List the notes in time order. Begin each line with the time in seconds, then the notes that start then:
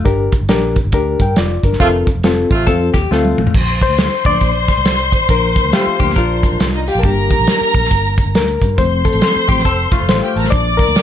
0.05 G1 D4 G4 A#4, kick, closed hi-hat
0.32 kick, closed hi-hat
0.41 G1
0.49 A#1 D4 G4 A#4, snare, closed hi-hat
0.76 kick, closed hi-hat
0.85 G1
0.92 D2 D4 G4 A#4, kick, closed hi-hat
1.20 G2 A#4 G5, kick, closed hi-hat
1.36 F1 F4 D5, snare, closed hi-hat
1.63 G1 D4 A#4, kick, closed hi-hat
1.73 snare
1.80 F1 C3 F3 A3 C4 F4 A4, kick, closed hi-hat
2.07 kick, closed hi-hat
2.15 F1
2.23 C4 F4 A4, snare, closed hi-hat
2.50 A1 C3 F3 A3 F4, kick, closed hi-hat
2.67 F2 C4 F4 A4, kick, closed hi-hat
2.94 D#2 G4, kick, snare, closed hi-hat
3.11 D2 A3 C4 F4 A4, snare
3.25 high tom
3.38 A1, mid tom
3.47 floor tom
3.54 A#1 C5 C6, kick, crash
3.82 C5, kick, closed hi-hat
3.89 D2
3.98 snare, closed hi-hat
4.25 D2 F3 A#3 D4 D5, kick, closed hi-hat
4.33 A#1
4.41 A#1, kick, closed hi-hat
4.68 kick, snare, closed hi-hat
4.77 C2
4.85 snare, closed hi-hat
4.99 closed hi-hat
5.12 A1, kick, closed hi-hat
5.29 A#1 F3 A#3 D4 A#4, kick, closed hi-hat
5.56 kick, closed hi-hat
5.65 D2
5.73 A3 F4 G4, snare, closed hi-hat
5.87 muted fingered electric bass stroke
6.00 D2 F3 A#3 D4 G4, kick, closed hi-hat
6.10 snare
6.16 A#1 D4 F4 A#4, kick, closed hi-hat
6.43 kick, closed hi-hat
6.52 A#1
6.60 C2, snare, closed hi-hat
6.74 D#4 D#5
6.87 F4 G4 F5 G5, open hi-hat
6.95 A#1 A4 A#4 A5
7.03 G1 G3 A#3 D4 G4 A#4 A#5, kick, closed hi-hat
7.31 kick, closed hi-hat
7.40 A#1
7.47 snare, closed hi-hat
7.61 muted fingered electric bass stroke
7.75 A#1, kick, closed hi-hat
7.84 snare
7.91 G1, kick, closed hi-hat
8.18 kick, closed hi-hat
8.26 G1
8.35 D2 A#4, snare, closed hi-hat
8.48 closed hi-hat
8.61 G2, kick, closed hi-hat
8.78 F1 F3 A3 C4 C5 C6, kick, closed hi-hat
9.05 A4, kick, closed hi-hat
9.13 A1, closed hi-hat
9.21 snare, closed hi-hat
9.36 muted fingered electric bass stroke
9.48 A1 F3 A3 C4 G4, kick, closed hi-hat
9.58 snare
9.65 F1 C4 A4, kick, closed hi-hat
9.92 A3 F4, muted fingered electric bass stroke, kick, closed hi-hat
10.01 F1
10.09 A1 C5, snare, closed hi-hat
10.23 G4 G5
10.35 A1 A4 A#4 A5 A#5, open hi-hat
10.44 C5 C6, snare
10.50 A#1 F3 A#3 D4 D5 D6, kick, closed hi-hat
10.77 A#4, kick, closed hi-hat
10.87 D2, closed hi-hat
10.96 snare, closed hi-hat